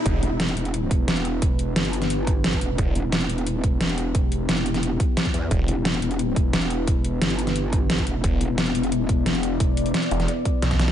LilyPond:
<<
  \new Staff \with { instrumentName = "Ambient pad" } { \time 4/4 \key e \minor \tempo 4 = 176 << { b'1~ | b'1 | g'1~ | g'1 |
b'1~ | b'1 | d''1~ | d''1 | } \\ { <b e'>1~ | <b e'>1~ | <b e'>1~ | <b e'>1~ |
<b e'>1~ | <b e'>1~ | <b e'>1~ | <b e'>1 | } >> }
  \new Staff \with { instrumentName = "Detuned saw bass" } { \clef bass \time 4/4 \key e \minor e,,8 r2. r8 | r1 | e,,8 r2. r8 | r1 |
e,,8 r2. r8 | r1 | e,,8 r2. r8 | r4. e,,8 r4 b,,4 | }
  \new Staff \with { instrumentName = "Wobble bass" } { \clef bass \time 4/4 \key e \minor r8 e,,4 e,,4 e,,4.~ | e,,4 g,,2~ g,,8 e,,8 | r8 e,,4 e,,4 e,,4.~ | e,,4 e,,4. r4 e,8 |
r8 e,,4 e,,4 e,,4.~ | e,,4 g,,2~ g,,8 e,,8 | r8 e,,4 e,,4 e,,4.~ | e,,4 r2. | }
  \new DrumStaff \with { instrumentName = "Drums" } \drummode { \time 4/4 <hh bd>8 hh8 <hh sn>16 hh16 hh16 hh16 hh8 <hh bd>8 <hh sn>16 hh16 hh8 | <hh bd>8 hh8 <hh sn>16 hh16 hh16 <hh sn>16 hh8 <hh bd>8 <hh sn>16 <hh bd>16 hh8 | <hh bd>8 hh8 <hh sn>16 hh16 hh16 hh16 hh8 <hh bd>8 <hh sn>16 hh16 hh8 | <hh bd>8 hh8 <hh sn>16 hh16 hh16 <hh sn>16 hh8 <hh bd>8 <hh sn>16 <hh bd>16 hh8 |
<hh bd>8 hh8 <hh sn>16 hh16 hh16 hh16 hh8 <hh bd>8 <hh sn>16 hh16 hh8 | <hh bd>8 hh8 <hh sn>16 hh16 hh16 <hh sn>16 hh8 <hh bd>8 <hh sn>16 <hh bd>16 hh8 | <hh bd>8 hh8 <hh sn>16 hh16 hh16 hh16 hh8 <hh bd>8 <hh sn>16 hh16 hh8 | <hh bd>8 hh16 hh16 <hh sn>16 hh16 hh16 <hh sn>16 hh8 <hh bd>8 <hh sn>16 <hh bd sn>16 <hh sn>16 sn16 | }
>>